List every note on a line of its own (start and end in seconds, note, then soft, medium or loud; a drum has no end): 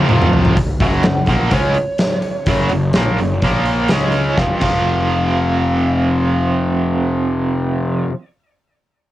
0.00 0.55 F2 medium
0.00 0.56 C3 medium
0.00 0.57 F3 medium
0.00 0.56 F4 medium
0.00 0.56 C5 medium
0.00 0.56 F5 medium
0.09 0.27 F1 medium
0.09 0.55 F2 medium
0.09 0.56 C3 medium
0.09 0.57 F3 medium
0.09 mid tom medium
0.22 mid tom medium
0.33 0.51 F1 medium
0.33 floor tom loud
0.45 floor tom loud
0.57 muted picked electric bass stroke soft
0.57 muted overdriven electric guitar stroke medium
0.57 muted distorted electric guitar stroke medium
0.57 kick loud
0.57 open hi-hat medium
0.80 1.02 F#1 medium
0.80 1.04 F#2 medium
0.80 1.04 C#3 medium
0.80 1.04 F#3 medium
0.80 1.25 F#5 loud
0.80 kick medium
0.80 open hi-hat soft
1.03 1.26 F#1 medium
1.03 1.23 F#2 medium
1.03 1.24 C#3 medium
1.03 snare loud
1.03 open hi-hat medium
1.16 snare soft
1.26 1.50 A#1 medium
1.26 1.51 A#2 medium
1.26 1.52 F3 medium
1.26 1.53 F#5 medium
1.26 kick medium
1.26 open hi-hat soft
1.30 1.52 A#3 medium
1.51 1.74 C#2 medium
1.51 1.75 C#3 medium
1.51 1.75 G#3 medium
1.51 1.76 C#4 medium
1.51 3.86 C#5 medium
1.51 kick medium
1.51 open hi-hat medium
1.74 open hi-hat soft
1.98 snare medium
1.98 open hi-hat medium
2.22 open hi-hat soft
2.46 2.69 F#1 medium
2.46 2.70 F#2 medium
2.46 2.70 C#3 medium
2.46 2.71 F#3 medium
2.46 kick medium
2.46 open hi-hat medium
2.69 2.93 F#1 medium
2.69 2.90 F#2 soft
2.69 2.90 C#3 medium
2.69 open hi-hat soft
2.93 3.17 A#1 medium
2.93 3.18 A#2 medium
2.93 3.18 F3 medium
2.93 3.19 A#3 medium
2.93 snare loud
2.93 open hi-hat medium
3.07 snare soft
3.18 3.41 F#1 medium
3.18 3.38 F#2 soft
3.18 3.38 C#3 medium
3.18 open hi-hat soft
3.42 3.87 A#1 medium
3.42 3.90 A#2 medium
3.42 3.90 F3 medium
3.42 3.91 A#3 medium
3.42 kick medium
3.42 open hi-hat medium
3.65 open hi-hat soft
3.88 4.35 C#2 medium
3.88 4.38 C#3 medium
3.88 4.38 G#3 medium
3.88 4.38 C#4 medium
3.88 snare loud
3.88 open hi-hat medium
4.12 open hi-hat soft
4.37 4.51 F1 medium
4.37 4.61 F2 medium
4.37 4.63 C3 medium
4.37 4.51 F5 medium
4.37 kick medium
4.37 snare medium
4.41 4.65 F3 medium
4.61 8.04 F1 medium
4.61 8.11 F2 medium
4.61 8.13 C3 medium
4.61 8.04 F5 medium
4.61 kick medium
4.61 crash medium
4.65 8.15 F3 medium